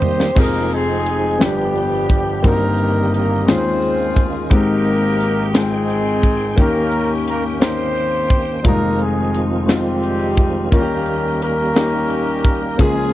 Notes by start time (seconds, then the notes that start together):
Already playing: D#3 G3 A#3 C4 D#4 G4 C5
0.02 floor tom
0.20 snare
0.35 F1 F2 F3 G#3 C4 D#4 F4 G#4, kick, crash
0.39 A#3 D#4 A#4
0.71 G#3 C4 D#4 G#4, closed hi-hat
1.06 closed hi-hat
1.38 G1 G2 G3 B3 D4 F4 G4, snare, closed hi-hat
1.43 G3 B3 D4 G4
1.75 closed hi-hat
2.10 kick, closed hi-hat
2.43 G1 G2 D#3 A#3 C4 D#4 F#4 G4, kick, closed hi-hat
2.47 A#3 D#4 A#4
2.52 G4
2.78 closed hi-hat
3.14 A#3 A#4, closed hi-hat
3.47 D#2 D#3 G#3 C4 C#4 D#4 F4 G#4 C5, snare, closed hi-hat
3.82 closed hi-hat
4.16 kick, closed hi-hat
4.50 G#1 G#2 G#3 A#3 C4 D#4 G4 A#4 G5, kick, closed hi-hat
4.85 closed hi-hat
5.21 closed hi-hat
5.54 G#3 C4 D#4 F4 G#4, snare, closed hi-hat
5.63 G5
5.89 closed hi-hat
6.23 kick, closed hi-hat
6.56 D#2 D#3 A#3 C#4 D#4 G4, kick, closed hi-hat
6.60 A#3 C#4 A#4
6.91 closed hi-hat
7.27 A#3 A#4, closed hi-hat
7.60 A#3 C4 C#4 D#4 G4 A#4 C5, snare, closed hi-hat
7.96 closed hi-hat
8.30 kick, closed hi-hat
8.63 F1 F2 F3 G3 G#3 A#3 C4 D#4 F4 A#4, kick, closed hi-hat
8.69 G#3
8.99 G#3 G#4, closed hi-hat
9.34 closed hi-hat
9.66 G3 G#3 C4 D#4 F4 G4, snare, closed hi-hat
10.03 closed hi-hat
10.37 kick, closed hi-hat
10.70 D#2 D#3 G3 A#3 C#4 D#4 F4 G4 A#4, kick, closed hi-hat
10.80 G4
11.06 closed hi-hat
11.42 A#3 C#4 G4 A#4, closed hi-hat
11.74 A#3 C#4 D#4 G4, snare, closed hi-hat
12.10 closed hi-hat
12.45 kick, closed hi-hat
12.78 C#2 C#3 F3 G#3 A#3 C#4 F4 G#4, kick, closed hi-hat